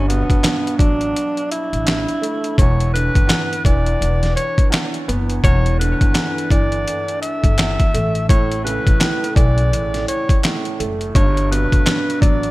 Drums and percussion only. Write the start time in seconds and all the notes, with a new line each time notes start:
0.10 closed hi-hat
0.30 kick, closed hi-hat
0.44 snare, clap, closed hi-hat
0.67 closed hi-hat
0.79 kick, closed hi-hat
1.01 closed hi-hat
1.16 closed hi-hat
1.37 closed hi-hat
1.52 closed hi-hat
1.73 closed hi-hat
1.87 snare, clap, closed hi-hat
2.08 closed hi-hat
2.23 closed hi-hat
2.44 closed hi-hat
2.58 kick, closed hi-hat
2.80 closed hi-hat
2.96 closed hi-hat
3.15 kick, closed hi-hat
3.29 snare, clap, closed hi-hat
3.53 closed hi-hat
3.65 kick, closed hi-hat
3.86 closed hi-hat
4.02 closed hi-hat
4.23 snare, closed hi-hat
4.37 closed hi-hat
4.58 kick, closed hi-hat
4.72 snare, clap, closed hi-hat
4.94 closed hi-hat
5.09 closed hi-hat
5.30 closed hi-hat
5.44 kick, closed hi-hat
5.66 closed hi-hat
5.81 closed hi-hat
6.01 kick, closed hi-hat
6.15 snare, clap, closed hi-hat
6.38 closed hi-hat
6.51 kick, closed hi-hat
6.72 closed hi-hat
6.88 closed hi-hat
7.08 closed hi-hat
7.23 closed hi-hat
7.44 kick, closed hi-hat
7.58 snare, clap, closed hi-hat
7.80 kick, closed hi-hat
7.95 closed hi-hat
8.15 closed hi-hat
8.29 kick, closed hi-hat
8.52 closed hi-hat
8.67 closed hi-hat
8.87 kick, closed hi-hat
9.01 snare, clap, closed hi-hat
9.24 closed hi-hat
9.36 kick, closed hi-hat
9.58 closed hi-hat
9.73 closed hi-hat
9.94 snare, closed hi-hat
10.08 closed hi-hat
10.29 kick, closed hi-hat
10.43 snare, clap, closed hi-hat
10.65 closed hi-hat
10.80 closed hi-hat
11.01 closed hi-hat
11.15 kick, closed hi-hat
11.37 closed hi-hat
11.52 closed hi-hat
11.72 kick, closed hi-hat
11.86 snare, clap, closed hi-hat
12.10 closed hi-hat
12.22 kick, closed hi-hat
12.43 closed hi-hat